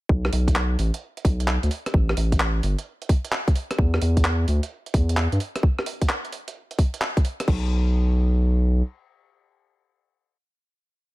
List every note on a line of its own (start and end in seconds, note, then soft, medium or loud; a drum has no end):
0.09 0.29 B1 medium
0.09 kick loud
0.25 cross-stick medium
0.33 0.76 B1 medium
0.33 open hi-hat loud
0.48 kick medium
0.48 closed hi-hat medium
0.56 clap loud
0.79 0.91 A1 medium
0.79 open hi-hat medium
0.94 closed hi-hat medium
1.17 closed hi-hat soft
1.25 1.58 B1 medium
1.25 kick loud
1.25 open hi-hat medium
1.40 closed hi-hat medium
1.48 clap loud
1.63 1.69 D2 medium
1.63 closed hi-hat soft
1.71 open hi-hat medium
1.86 cross-stick medium
1.86 closed hi-hat medium
1.94 2.14 A1 loud
1.94 kick loud
2.09 cross-stick medium
2.17 2.61 A1 medium
2.17 open hi-hat loud
2.32 kick medium
2.32 closed hi-hat medium
2.40 clap loud
2.63 2.76 G1 medium
2.63 open hi-hat medium
2.79 closed hi-hat medium
3.02 closed hi-hat soft
3.09 kick loud
3.09 open hi-hat medium
3.25 closed hi-hat medium
3.32 clap loud
3.48 kick loud
3.48 closed hi-hat soft
3.55 open hi-hat medium
3.71 cross-stick medium
3.71 closed hi-hat medium
3.78 3.99 E2 loud
3.78 kick loud
3.94 cross-stick medium
4.02 4.46 E2 medium
4.02 open hi-hat loud
4.17 kick medium
4.17 closed hi-hat medium
4.25 clap loud
4.48 4.60 D2 medium
4.48 open hi-hat medium
4.63 closed hi-hat medium
4.86 closed hi-hat soft
4.94 5.28 E2 medium
4.94 kick loud
4.94 open hi-hat medium
5.09 closed hi-hat medium
5.17 clap loud
5.32 5.39 G2 medium
5.32 closed hi-hat soft
5.40 open hi-hat medium
5.56 cross-stick medium
5.56 closed hi-hat medium
5.63 kick loud
5.79 cross-stick medium
5.86 open hi-hat loud
6.02 kick medium
6.02 closed hi-hat medium
6.09 clap loud
6.25 closed hi-hat soft
6.32 open hi-hat medium
6.48 closed hi-hat medium
6.71 closed hi-hat soft
6.79 kick loud
6.79 open hi-hat medium
6.94 closed hi-hat medium
7.02 clap loud
7.17 kick loud
7.17 closed hi-hat soft
7.25 open hi-hat medium
7.40 cross-stick medium
7.40 closed hi-hat medium
7.48 8.82 B1 loud
7.48 kick loud
7.48 crash medium